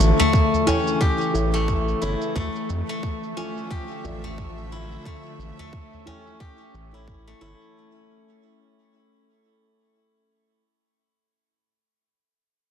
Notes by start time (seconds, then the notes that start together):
Already playing: C#3 E3 A3 C#4 E4 G4
0.00 A1, cabasa
0.20 A3, udu, cabasa
0.33 kick, cabasa
0.53 udu, cabasa
0.67 C#4 E4 A4 C#5 G5, udu, cabasa
0.87 cabasa
1.01 G4, kick, cabasa
1.21 cabasa
1.33 A1 E4 A4 C#5 E5, cabasa
1.54 A3, cabasa
1.68 kick, cabasa
1.88 cabasa
2.01 G1 E4 A4 C#5 E5, cabasa
2.21 cabasa
2.36 D2 D3 F3 A3 E5, kick, cabasa
2.56 cabasa
2.70 F2, cabasa
2.89 A3, cabasa
3.03 kick, cabasa
3.23 cabasa
3.37 C#4 F4 A4 E5 D6, cabasa
3.57 cabasa
3.71 G4, kick, cabasa
3.91 cabasa
4.04 A1 F4 A4 D5 E5, udu, cabasa
4.23 A3, udu, cabasa
4.38 kick, cabasa
4.58 cabasa
4.72 E4, cabasa
4.91 cabasa
5.06 A3 C#4, kick, cabasa
5.26 cabasa
5.39 A1, cabasa
5.59 A3, udu, cabasa
5.73 kick, cabasa
5.93 udu, cabasa
6.06 C#4 E4 A4 C#5 G5, udu, cabasa
6.27 cabasa
6.40 G4, kick, cabasa
6.61 cabasa
6.74 A1, cabasa
6.92 E4 A4 C#5 E5, cabasa
7.08 kick, cabasa
7.28 A3
7.41 G1 E4 A4 C#5 E5, cabasa
7.62 cabasa